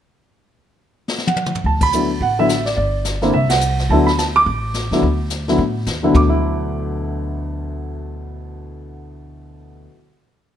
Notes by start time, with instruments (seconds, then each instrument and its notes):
1.08 snare
1.18 snare
1.27 grand piano F#5, high tom
1.36 high tom
1.46 mid tom
1.55 floor tom
1.64 upright bass D2, grand piano A5, brush sweep, kick
1.81 grand piano B5, kick, ride
1.93 grand piano D3 F#3 B3 E4, hi-hat pedal
2.20 upright bass A1, grand piano F#5, brush sweep, kick
2.39 grand piano D3 F#3 B3 E4 E5
2.49 snare, hi-hat pedal
2.66 grand piano D5, snare
2.76 upright bass G1, grand piano D5, brush sweep, kick
3.05 snare, hi-hat pedal
3.22 grand piano D3 A#3 C4 E4, snare
3.33 upright bass C2, grand piano E5, brush sweep, kick
3.49 grand piano F#5, snare, ride
3.61 hi-hat pedal
3.78 snare
3.90 upright bass D2, grand piano D3 F#3 B3 E4 A5, brush sweep, kick
4.06 grand piano B5, snare
4.18 grand piano A5, snare, hi-hat pedal
4.36 grand piano D6
4.46 upright bass A1, brush sweep, kick
4.74 snare, hi-hat pedal
4.91 upright bass A2, grand piano D3 F#3 B3 E4, snare
5.02 upright bass D2, brush sweep, kick
5.30 snare, hi-hat pedal
5.48 grand piano D3 F#3 B3 E4, snare
5.58 upright bass A2, brush sweep, kick
5.86 upright bass D#2, snare, hi-hat pedal
6.03 grand piano D2 D3 F#3 B3 E4
6.12 upright bass D2, grand piano B2 D6, kick, floor tom
6.21 grand piano F#3
6.29 grand piano E4